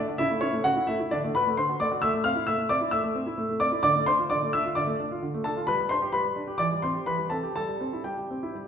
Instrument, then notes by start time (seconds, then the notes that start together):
grand piano
0.08 D4
0.18 C#3 E4 E5
0.31 A3
0.41 C#4 E4 C#5
0.53 A3
0.64 C#3 F#4 F#5
0.76 E4
0.87 A3 E4 E5
1.00 E4
1.11 D3 D4 D5
1.24 A3
1.35 F#4 B4 B5
1.47 A3
1.57 D3 C5 C6
1.69 F#4
1.80 A3 D5 D6
1.91 F#4
2.02 A3 E5 E6
2.14 A3
2.24 C4 F5 F6
2.35 E4
2.47 A3 E5 E6
2.58 A3
2.69 C4 D5 D6
2.81 E4
2.91 A3 E5 E6
3.04 A3
3.15 C4
3.26 E4
3.38 A3
3.49 A3
3.60 C4 D5 D6
3.72 E4
3.83 D3 D5 D6
3.95 A3
4.06 D4 C5 C6
4.19 F4
4.30 D3 D5 D6
4.42 A3
4.53 D4 E5 E6
4.65 F4
4.75 D3 D5 D6
4.87 A3
5.00 D4
5.11 F4
5.22 D3
5.34 A3
5.44 D4 A4 A5
5.57 F4
5.67 G3 B4 B5
5.79 G3
5.89 D4 C5 C6
6.02 G4
6.12 G3 B4 B5
6.24 G3
6.36 D4
6.47 G4
6.58 E3 D5 D6
6.71 G3
6.82 C4 C5 C6
6.94 G4
7.06 E3 B4 B5
7.18 G3
7.30 C4 A4 A5
7.43 G4
7.56 G3 A4 A5
7.68 G3
7.81 C4
7.93 E4
8.04 G3 G4 G5
8.18 G3
8.31 C4
8.43 E4
8.55 G3